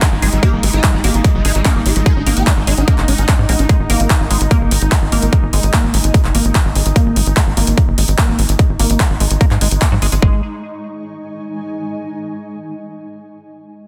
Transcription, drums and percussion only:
0.02 kick, clap, closed hi-hat
0.22 open hi-hat
0.33 closed hi-hat
0.43 kick, closed hi-hat
0.63 open hi-hat
0.73 closed hi-hat
0.84 kick, clap, closed hi-hat
1.04 open hi-hat
1.14 closed hi-hat
1.24 kick, closed hi-hat
1.45 open hi-hat
1.55 closed hi-hat
1.65 kick, clap, closed hi-hat
1.86 open hi-hat
1.96 closed hi-hat
2.06 kick, closed hi-hat
2.27 open hi-hat
2.37 closed hi-hat
2.47 kick, clap, closed hi-hat
2.67 open hi-hat
2.77 closed hi-hat
2.88 kick, closed hi-hat
2.98 clap
3.08 open hi-hat
3.18 closed hi-hat
3.29 kick, clap, closed hi-hat
3.49 open hi-hat
3.59 closed hi-hat
3.69 kick, closed hi-hat
3.90 open hi-hat
4.00 closed hi-hat
4.10 kick, clap, closed hi-hat
4.31 open hi-hat
4.41 closed hi-hat
4.51 kick, closed hi-hat
4.71 open hi-hat
4.82 closed hi-hat
4.92 kick, clap, closed hi-hat
5.12 open hi-hat
5.22 closed hi-hat
5.33 kick, closed hi-hat
5.53 open hi-hat
5.63 closed hi-hat
5.73 kick, clap, closed hi-hat
5.94 open hi-hat
6.04 closed hi-hat
6.14 kick, closed hi-hat
6.24 clap
6.35 open hi-hat
6.45 closed hi-hat
6.55 kick, clap, closed hi-hat
6.75 open hi-hat
6.86 closed hi-hat
6.96 kick, closed hi-hat
7.16 open hi-hat
7.26 closed hi-hat
7.37 kick, clap, closed hi-hat
7.57 open hi-hat
7.67 closed hi-hat
7.78 kick, closed hi-hat
7.98 open hi-hat
8.08 closed hi-hat
8.18 kick, clap, closed hi-hat
8.39 open hi-hat
8.49 closed hi-hat
8.59 kick, closed hi-hat
8.80 open hi-hat
8.90 closed hi-hat
9.00 kick, clap, closed hi-hat
9.20 open hi-hat
9.31 closed hi-hat
9.41 kick, closed hi-hat
9.51 clap
9.61 open hi-hat
9.71 closed hi-hat
9.82 kick, clap, closed hi-hat
10.02 open hi-hat
10.12 closed hi-hat
10.22 kick

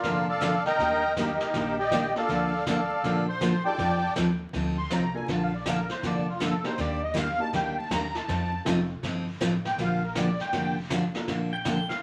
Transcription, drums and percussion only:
0.03 brush sweep, kick, snare
0.41 kick, snare, hi-hat pedal
0.65 snare
0.79 brush sweep, kick, snare
1.16 kick, snare, hi-hat pedal
1.40 snare
1.54 brush sweep, kick, snare
1.91 kick, snare, hi-hat pedal
2.16 snare
2.29 brush sweep, kick, snare
2.66 kick, snare, hi-hat pedal
3.04 brush sweep, kick, snare
3.41 kick, snare, hi-hat pedal
3.78 brush sweep, kick, snare
4.16 kick, snare, hi-hat pedal
4.53 brush sweep, kick, snare
4.90 kick, snare, hi-hat pedal
5.28 brush sweep, kick, snare
5.66 kick, snare, hi-hat pedal
5.89 snare
6.03 brush sweep, kick, snare
6.40 kick, snare, hi-hat pedal
6.64 snare
6.78 brush sweep, kick, snare
7.16 kick, snare, hi-hat pedal
7.53 brush sweep, kick, snare
7.91 kick, snare, hi-hat pedal
8.15 snare
8.28 brush sweep, kick, snare
8.66 kick, snare, hi-hat pedal
9.03 brush sweep, kick, snare
9.41 kick, snare, hi-hat pedal
9.65 snare
9.78 brush sweep, kick, snare
10.15 kick, snare, hi-hat pedal
10.40 snare
10.53 brush sweep, kick, snare
10.90 kick, snare, hi-hat pedal
11.15 snare
11.28 brush sweep, kick, snare
11.65 kick, snare, hi-hat pedal
11.89 snare

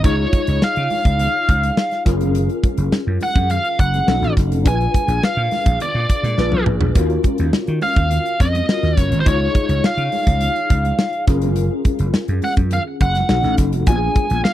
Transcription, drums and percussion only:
0.04 kick, closed hi-hat, low conga
0.33 kick, closed hi-hat, high conga
0.47 closed hi-hat
0.62 snare
0.76 closed hi-hat
0.90 open hi-hat, muted conga, high conga
1.05 kick, closed hi-hat
1.19 closed hi-hat, muted conga, low conga
1.48 kick, closed hi-hat, muted conga
1.63 closed hi-hat, high conga
1.77 snare, muted conga
1.91 snare, closed hi-hat
2.05 kick, snare, closed hi-hat, muted conga
2.21 closed hi-hat, high conga, low conga
2.35 closed hi-hat, muted conga, low conga
2.49 closed hi-hat
2.63 kick, closed hi-hat, muted conga, high conga
2.78 closed hi-hat
2.92 snare
3.20 open hi-hat, high conga
3.35 kick, closed hi-hat
3.50 closed hi-hat, muted conga, low conga
3.64 closed hi-hat
3.79 kick, closed hi-hat, muted conga
3.94 closed hi-hat, high conga
4.08 snare
4.22 snare, closed hi-hat
4.37 kick, snare, closed hi-hat, muted conga
4.52 closed hi-hat, high conga, low conga
4.66 kick, closed hi-hat, muted conga, low conga
4.81 closed hi-hat
4.94 kick, closed hi-hat, high conga
5.08 closed hi-hat
5.23 snare
5.51 snare, open hi-hat, muted conga, high conga
5.66 kick, closed hi-hat
5.80 closed hi-hat, muted conga, low conga
6.10 kick, closed hi-hat
6.24 snare, closed hi-hat, high conga
6.38 snare, muted conga
6.52 high tom
6.66 mid tom
6.81 floor tom, high conga, low conga
6.95 kick, closed hi-hat, muted conga, low conga
7.10 closed hi-hat
7.23 kick, closed hi-hat, muted conga, high conga
7.38 closed hi-hat
7.53 snare
7.67 closed hi-hat
7.81 open hi-hat, muted conga, high conga
7.96 kick, closed hi-hat
8.10 closed hi-hat, muted conga, low conga
8.26 closed hi-hat
8.40 kick, closed hi-hat, muted conga
8.54 closed hi-hat, high conga
8.69 snare, muted conga
8.83 snare, closed hi-hat
8.97 kick, snare, closed hi-hat
9.12 closed hi-hat, high conga, low conga
9.26 kick, closed hi-hat, low conga
9.55 kick, closed hi-hat, high conga
9.69 closed hi-hat
9.84 snare
9.98 closed hi-hat
10.12 open hi-hat, muted conga, high conga
10.27 kick, closed hi-hat
10.41 closed hi-hat, low conga
10.56 closed hi-hat
10.70 kick, closed hi-hat
10.85 closed hi-hat, high conga
10.99 snare, muted conga
11.13 closed hi-hat
11.27 kick, snare, closed hi-hat
11.42 closed hi-hat, high conga, low conga
11.56 closed hi-hat, muted conga, low conga
11.85 kick, closed hi-hat, high conga
11.99 closed hi-hat
12.14 snare
12.28 closed hi-hat
12.42 open hi-hat, muted conga, high conga
12.57 kick, closed hi-hat
12.71 closed hi-hat, low conga
13.00 kick, closed hi-hat, muted conga
13.15 snare, closed hi-hat, high conga
13.29 snare
13.43 snare, closed hi-hat
13.58 kick, snare, closed hi-hat, muted conga
13.73 closed hi-hat, high conga, low conga
13.86 kick, closed hi-hat, muted conga, low conga
14.15 kick, closed hi-hat, muted conga, high conga
14.30 closed hi-hat
14.45 snare

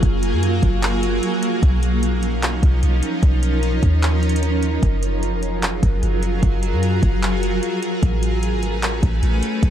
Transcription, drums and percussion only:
0.03 kick, closed hi-hat
0.23 closed hi-hat
0.43 closed hi-hat
0.63 kick, closed hi-hat
0.83 clap, closed hi-hat
1.03 closed hi-hat
1.23 closed hi-hat
1.43 closed hi-hat
1.63 kick, closed hi-hat
1.83 closed hi-hat
2.03 closed hi-hat
2.23 closed hi-hat
2.43 clap, closed hi-hat
2.63 kick, closed hi-hat
2.83 closed hi-hat
3.03 closed hi-hat
3.23 kick, closed hi-hat
3.43 closed hi-hat
3.63 closed hi-hat
3.83 kick, closed hi-hat
4.03 clap, closed hi-hat
4.23 closed hi-hat
4.29 closed hi-hat
4.36 closed hi-hat
4.43 closed hi-hat
4.63 closed hi-hat
4.83 kick, closed hi-hat
5.03 closed hi-hat
5.23 closed hi-hat
5.43 closed hi-hat
5.63 clap, closed hi-hat
5.83 kick, closed hi-hat
6.03 closed hi-hat
6.23 closed hi-hat
6.43 kick, closed hi-hat
6.63 closed hi-hat
6.83 closed hi-hat
7.03 kick, closed hi-hat
7.23 clap, closed hi-hat
7.43 closed hi-hat
7.63 closed hi-hat
7.83 closed hi-hat
8.03 kick, closed hi-hat
8.23 closed hi-hat
8.43 closed hi-hat
8.63 closed hi-hat
8.83 clap, closed hi-hat
9.03 kick, closed hi-hat
9.23 closed hi-hat
9.43 closed hi-hat
9.63 kick, closed hi-hat

